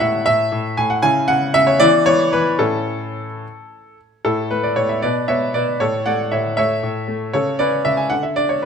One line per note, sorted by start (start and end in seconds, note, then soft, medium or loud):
0.00 0.26 A2 medium
0.00 0.99 C#4 medium
0.00 0.99 E4 soft
0.00 0.26 E5 medium
0.00 0.27 F#5 loud
0.26 0.50 A2 medium
0.26 0.77 E5 loud
0.52 0.76 A2 medium
0.77 1.02 A2 medium
0.77 0.90 G#5 medium
0.90 1.03 F#5 medium
1.02 1.27 C#3 medium
1.02 1.76 C#4 medium
1.02 1.76 E4 medium
1.02 1.28 G#5 loud
1.28 1.53 C#3 medium
1.28 1.54 F#5 loud
1.54 1.80 C#3 medium
1.54 1.67 E5 loud
1.67 1.80 C#5 medium
1.80 2.05 E3 medium
1.80 2.56 B3 medium
1.80 2.56 E4 medium
1.80 2.06 D5 loud
2.06 2.31 E3 medium
2.06 2.33 C#5 loud
2.33 2.59 E3 medium
2.33 2.60 B4 loud
2.59 3.17 A2 medium
2.59 3.26 C#4 medium
2.59 3.26 E4 medium
2.59 3.97 A4 medium
4.25 4.75 A2 medium
4.25 4.50 E4 medium
4.25 4.51 A4 medium
4.51 5.01 A3 medium
4.51 4.64 B4 medium
4.63 4.77 D5 medium
4.76 5.02 A2 medium
4.76 4.89 C#5 medium
4.89 5.02 E5 medium
5.02 5.53 B2 medium
5.02 5.27 B4 medium
5.02 5.28 D5 medium
5.28 5.79 B3 medium
5.28 5.53 C#5 medium
5.28 5.54 E5 medium
5.54 5.80 B2 medium
5.54 5.79 B4 medium
5.54 5.80 D5 medium
5.80 6.31 A2 medium
5.80 6.05 A4 medium
5.80 6.06 C#5 medium
6.06 6.56 A3 medium
6.06 6.30 D5 medium
6.06 6.31 F#5 medium
6.32 6.81 A2 medium
6.32 6.56 C#5 medium
6.32 6.55 E5 medium
6.57 7.06 A3 medium
6.57 7.30 C#5 medium
6.57 7.33 E5 loud
6.83 7.32 A2 medium
7.08 7.33 A3 medium
7.33 7.84 C#3 medium
7.33 7.58 A4 medium
7.33 7.59 C#5 medium
7.59 8.09 C#4 medium
7.59 7.83 B4 medium
7.59 7.84 D5 medium
7.85 8.10 C#3 medium
7.85 7.97 E5 medium
7.97 8.10 G#5 medium
8.10 8.62 D3 medium
8.10 8.23 F#5 medium
8.23 8.36 E5 medium
8.36 8.65 D4 medium
8.36 8.49 D5 medium
8.49 8.62 C#5 medium